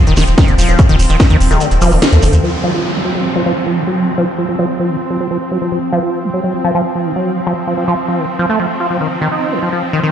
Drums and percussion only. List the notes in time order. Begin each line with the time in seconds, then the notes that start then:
0.07 closed hi-hat, shekere
0.17 snare, open hi-hat, shekere
0.27 closed hi-hat, shekere
0.38 kick, snare, closed hi-hat, shekere
0.48 closed hi-hat, shekere
0.58 open hi-hat, shekere
0.69 closed hi-hat, shekere
0.79 kick, closed hi-hat, shekere
0.89 closed hi-hat, shekere
0.99 open hi-hat, shekere
1.09 closed hi-hat, shekere
1.20 kick, snare, closed hi-hat, shekere
1.30 closed hi-hat, shekere
1.41 open hi-hat, shekere
1.51 closed hi-hat, shekere
1.60 closed hi-hat, shekere
1.71 closed hi-hat, shekere
1.81 open hi-hat, shekere
1.92 open hi-hat, shekere
2.02 snare, closed hi-hat, shekere
2.12 closed hi-hat, shekere
2.22 open hi-hat, shekere
2.33 closed hi-hat, shekere